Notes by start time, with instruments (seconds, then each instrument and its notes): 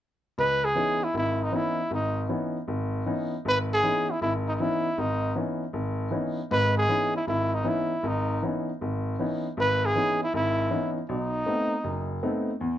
0.38 grand piano C#2, trumpet B4
0.65 trumpet G#4
0.75 grand piano E3 B3 C#4 D#4
1.04 trumpet E4
1.14 grand piano G#1, trumpet E4
1.43 trumpet D#4
1.52 grand piano E3 B3 C#4 D#4, trumpet E4
1.90 grand piano G#1, trumpet D#4
2.29 grand piano E3 B3 C#4 D#4
2.68 grand piano G#1
3.06 grand piano E3 B3 C#4 D#4
3.45 grand piano G#1, trumpet B4
3.73 trumpet G#4
3.83 grand piano E3 B3 C#4 D#4
4.11 trumpet E4
4.21 grand piano G#1, trumpet E4
4.48 trumpet D#4
4.55 trumpet D#4
4.60 grand piano E3 B3 C#4 D#4, trumpet E4
4.98 grand piano G#1, trumpet D#4
5.36 grand piano E3 B3 C#4 D#4
5.73 grand piano G#1
6.11 grand piano E3 B3 C#4 D#4
6.51 grand piano G#1 G#2, trumpet B4
6.77 trumpet G#4
6.88 grand piano E3 B3 C#4 D#4
7.16 trumpet E4
7.27 grand piano G#1, trumpet E4
7.54 trumpet D#4
7.64 grand piano E3 B3 C#4 D#4, trumpet E4
8.03 grand piano G#1
8.08 trumpet D#4
8.42 grand piano E3 B3 C#4 D#4
8.81 grand piano G#1
9.19 grand piano E3 B3 C#4 D#4
9.57 grand piano G#1, trumpet B4
9.85 trumpet G#4
9.96 grand piano E3 B3 C#4 D#4
10.23 trumpet E4
10.34 grand piano G#1, trumpet E4
10.70 grand piano E3 B3 C#4 D#4
11.09 grand piano B1, trumpet D#4
11.46 grand piano A3 B3 C4 D#4
11.84 grand piano F#1
12.23 grand piano A3 B3 C4 D#4
12.61 grand piano E2